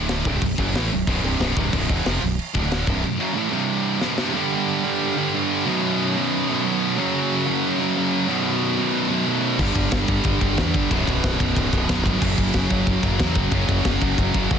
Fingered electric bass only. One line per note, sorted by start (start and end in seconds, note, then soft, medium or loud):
0.00 0.23 D1 medium
0.26 0.41 C1 medium
0.42 0.57 B0 medium
0.58 0.73 F#1 medium
0.74 0.89 A1 medium
0.93 1.07 B0 medium
1.07 1.22 B0 loud
1.23 1.39 C1 loud
1.39 1.55 B0 medium
1.57 1.72 C1 medium
1.73 1.88 B0 medium
1.89 2.04 E1 medium
2.06 2.21 F1 medium
2.23 2.38 B0 medium
2.55 2.86 D1 medium
2.88 3.03 C1 medium
9.59 9.75 G1 medium
9.75 9.91 G1 medium
9.92 10.08 G1 loud
10.08 10.24 G1 medium
10.25 10.41 G1 medium
10.42 10.57 G1 medium
10.58 10.74 E2 loud
10.74 10.90 G1 medium
10.91 11.06 B0 medium
11.08 11.23 B0 medium
11.23 11.39 B0 medium
11.41 11.56 B0 medium
11.57 11.72 B0 medium
11.72 11.88 B0 medium
11.90 12.05 B0 medium
12.06 12.21 G1 medium
12.22 12.37 F#1 loud
12.38 12.54 F#1 medium
12.55 12.70 F#1 medium
12.71 12.87 F#1 medium
12.87 13.02 F#1 loud
13.02 13.19 F#1 medium
13.20 13.35 E2 loud
13.36 13.51 F#1 medium
13.51 13.68 F#1 loud
13.68 13.84 F#1 loud
13.85 14.01 F#1 medium
14.02 14.18 F#1 medium
14.19 14.34 F#1 loud
14.34 14.50 F#1 medium
14.51 14.59 F#1 loud